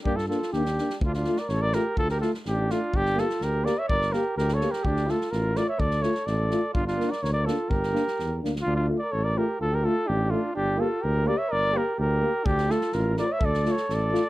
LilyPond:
<<
  \new Staff \with { instrumentName = "Trumpet" } { \time 2/4 \tempo 4 = 126 g'16 a'16 a'8 g'4 | f'16 f'8 d''16 cis''16 d''16 bes'8 | a'16 bes'16 a'8 g'8 f'8 | g'8 a'8 bes'8 d''16 e''16 |
d''8 bes'8 \tuplet 3/2 { bes'8 cis''8 bes'8 } | g'8 a'8 bes'8 d''16 e''16 | d''8 cis''8 d''4 | f'16 f'8 d''16 cis''16 d''16 a'8 |
bes'4. r8 | f'16 f'8 d''16 cis''16 d''16 bes'8 | a'16 bes'16 a'8 g'8 f'8 | g'8 a'8 bes'8 d''16 e''16 |
d''8 bes'8 bes'4 | g'8 a'8 bes'8 d''16 e''16 | d''8 cis''8 d''4 | }
  \new Staff \with { instrumentName = "Flugelhorn" } { \time 2/4 d'16 f'16 f'8 d'4 | d'16 d'8 bes'16 a'16 bes'16 g'8 | f'16 g'16 f'8 d'8 d'8 | d'8 f'8 g'8 bes'16 cis''16 |
bes'8 g'8 \tuplet 3/2 { g'8 a'8 g'8 } | d'8 f'8 f'8 bes'16 cis''16 | a'8 a'8 a'4 | d'16 d'8 bes'16 bes'16 bes'16 f'8 |
g'4. r8 | d'16 d'8 bes'16 a'16 bes'16 g'8 | f'16 g'16 f'8 d'8 d'8 | d'8 f'8 g'8 bes'16 cis''16 |
bes'8 g'8 g'4 | d'8 f'8 f'8 bes'16 cis''16 | a'8 a'8 a'4 | }
  \new Staff \with { instrumentName = "Euphonium" } { \time 2/4 d'8 d'8 d'8 d'8 | r8 f'8 r8 f'8 | r8 f'8 r8 f'8 | r8 g'8 r8 g'8 |
r8 g'8 r8 g'8 | r8 f'8 r8 f'8 | r8 f'8 r8 f'8 | r8 d'8 r8 d'8 |
r8 d'8 r8 d'8 | r8 f'8 r8 f'8 | r8 f'8 r8 f'8 | r8 g'8 r8 g'8 |
r8 g'8 r8 g'8 | r8 f'8 r8 f'8 | r8 f'8 r8 f'8 | }
  \new Staff \with { instrumentName = "Euphonium" } { \time 2/4 bes8 bes8 bes8 bes8 | r8 a8 r8 a8 | r8 a8 r8 a8 | r8 bes8 r8 bes8 |
r8 bes8 r8 bes8 | r8 a8 r8 a8 | r8 a8 r8 a8 | r8 bes8 r8 bes8 |
r8 bes8 r8 bes8 | r8 a8 r8 a8 | r8 a8 r8 a8 | r8 bes8 r8 bes8 |
r8 bes8 r8 bes8 | r8 a8 r8 a8 | r8 a8 r8 a8 | }
  \new Staff \with { instrumentName = "Tuba" } { \clef bass \time 2/4 g,4 ees,4 | d,4 a,,4 | d,4 a,,4 | g,,4 d,4 |
g,,4 d,4 | d,4 a,,4 | d,4 a,,4 | g,,4 d,4 |
g,,4 e,8 d,8 | d,4 a,,4 | d,4 a,,4 | g,,4 d,4 |
g,,4 d,4 | d,4 a,,4 | d,4 a,,4 | }
  \new DrumStaff \with { instrumentName = "Drums" } \drummode { \time 2/4 bd16 sn16 sn16 sn16 sn16 sn16 sn16 sn16 | bd16 sn16 sn16 sn16 sn8 sn8 | bd16 sn16 sn16 sn16 sn8 sn8 | bd16 sn16 sn16 sn16 sn8 sn8 |
bd16 sn16 sn8 sn16 sn16 sn16 sn16 | bd16 sn16 sn16 sn16 sn8 sn8 | bd16 sn16 sn16 sn16 sn8 sn8 | bd16 sn16 sn16 sn16 sn8 sn8 |
bd16 sn16 sn16 sn16 sn8 sn16 sn16 | r4 r4 | r4 r4 | r4 r4 |
r4 r4 | bd16 sn16 sn16 sn16 sn8 sn8 | bd16 sn16 sn16 sn16 sn8 sn8 | }
>>